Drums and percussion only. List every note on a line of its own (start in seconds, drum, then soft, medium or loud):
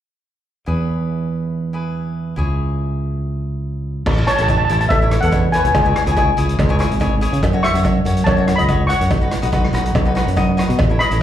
4.06 kick loud
4.06 crash loud
4.06 cowbell medium
4.27 cross-stick medium
4.27 closed hi-hat medium
4.38 closed hi-hat medium
4.48 kick medium
4.48 closed hi-hat medium
4.48 cowbell medium
4.69 closed hi-hat medium
4.81 closed hi-hat medium
4.90 kick loud
4.90 closed hi-hat medium
4.90 cowbell medium
5.11 cross-stick medium
5.11 closed hi-hat medium
5.22 closed hi-hat medium
5.32 kick medium
5.32 closed hi-hat medium
5.32 cowbell medium
5.53 closed hi-hat medium
5.65 closed hi-hat medium
5.75 kick loud
5.75 closed hi-hat medium
5.75 cowbell medium
5.96 cross-stick medium
5.96 closed hi-hat medium
6.07 closed hi-hat medium
6.17 kick medium
6.17 closed hi-hat medium
6.17 cowbell medium
6.38 closed hi-hat medium
6.49 closed hi-hat medium
6.59 kick loud
6.59 closed hi-hat medium
6.59 cowbell loud
6.80 cross-stick medium
6.80 closed hi-hat medium
6.91 closed hi-hat medium
7.01 kick medium
7.01 closed hi-hat medium
7.01 cowbell medium
7.22 closed hi-hat medium
7.33 closed hi-hat medium
7.43 kick loud
7.43 closed hi-hat medium
7.43 cowbell loud
7.64 cross-stick medium
7.64 closed hi-hat medium
7.75 closed hi-hat medium
7.85 kick medium
7.85 closed hi-hat medium
7.85 cowbell medium
8.06 closed hi-hat medium
8.17 closed hi-hat medium
8.26 kick loud
8.26 closed hi-hat medium
8.26 cowbell medium
8.47 cross-stick medium
8.47 closed hi-hat medium
8.59 closed hi-hat medium
8.69 kick medium
8.69 closed hi-hat medium
8.69 cowbell medium
8.90 closed hi-hat medium
9.01 closed hi-hat medium
9.10 kick loud
9.10 closed hi-hat medium
9.10 cowbell medium
9.31 cross-stick medium
9.31 closed hi-hat medium
9.43 closed hi-hat medium
9.53 kick medium
9.53 closed hi-hat medium
9.53 cowbell medium
9.64 cross-stick medium
9.74 cross-stick medium
9.74 closed hi-hat medium
9.86 closed hi-hat medium
9.95 kick loud
9.95 closed hi-hat medium
9.95 cowbell loud
10.17 cross-stick medium
10.17 closed hi-hat medium
10.28 closed hi-hat medium
10.37 kick medium
10.37 closed hi-hat medium
10.37 cowbell medium
10.59 cross-stick medium
10.59 closed hi-hat medium
10.70 closed hi-hat medium
10.79 kick loud
10.79 closed hi-hat medium
10.79 cowbell loud
11.01 cross-stick medium
11.01 closed hi-hat medium
11.11 closed hi-hat medium